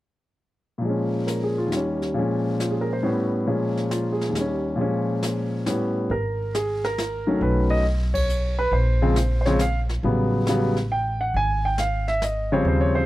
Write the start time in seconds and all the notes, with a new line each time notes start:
0.78 A#2 F3
0.84 G#3, brush sweep
0.89 C#4
1.27 A#4, snare, hi-hat pedal
1.43 G#4
1.58 F4
1.66 D#2 D#3
1.72 G3, snare, hi-hat pedal
1.76 C#4
2.02 snare
2.14 A#2 F3 G#3, brush sweep
2.19 C#4
2.60 F4, snare, hi-hat pedal
2.71 G#4
2.81 A#4
2.93 C5
3.03 A2 G3 B3 C#4
3.47 A#2 F3 G#3 C#4, brush sweep
3.77 snare
3.91 F4, snare, hi-hat pedal
4.13 G#4
4.21 snare
4.29 D#2
4.33 D#3 G3, snare, hi-hat pedal
4.41 C#4
4.76 A#2 F3 G#3, brush sweep
4.81 C#4
5.23 snare, hi-hat pedal
5.66 A2 G3 B3 C#4, snare, hi-hat pedal
6.10 G#1 A#4, brush sweep
6.55 G#4, snare, hi-hat pedal
6.84 A#4, snare
6.98 snare, hi-hat pedal
7.27 D#3 F#3 A3 C#4
7.41 B1 B4, brush sweep
7.70 D#5
8.14 C#5, kick, ride
8.29 hi-hat pedal
8.59 B4
8.71 A#1 C5, brush sweep
9.02 C#3 F3 G#3 C4
9.16 snare, hi-hat pedal
9.41 C5
9.46 C#3 F3 G#3 C4 C#5, snare
9.59 F5, snare, hi-hat pedal
9.89 snare
10.03 A1 C#3 F#3 G3 B3, brush sweep
10.47 C#3 F#3 G3 B3, snare, hi-hat pedal
10.76 snare
10.92 G5
11.21 F#5
11.34 G#1 G#5, brush sweep
11.65 G5
11.78 F5, snare, hi-hat pedal
12.08 E5, snare
12.22 D#5, snare, hi-hat pedal
12.52 C#3 F3 G3 C4 C#5
12.65 D#2 C5, brush sweep
12.81 C#5
12.95 C5